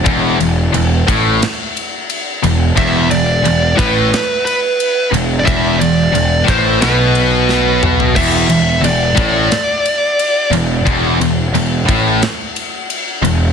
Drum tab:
CC |----------------|----------------|----------------|x---------------|
RD |x-x-x-x-x-x-x-x-|x-x-x-x-x-x-x-x-|x-x-x-x-x-x-----|--x-x-x-x-x-x-x-|
SD |--------o-------|--------o-------|--------o---o---|--------o-------|
T2 |----------------|----------------|--------------o-|----------------|
FT |----------------|----------------|---------------o|----------------|
BD |o-----o---------|o-----o---------|o-----o---------|o-----o---------|

CC |----------------|
RD |x-x-x-x-x-x-x-x-|
SD |--------o-------|
T2 |----------------|
FT |----------------|
BD |o-----o---------|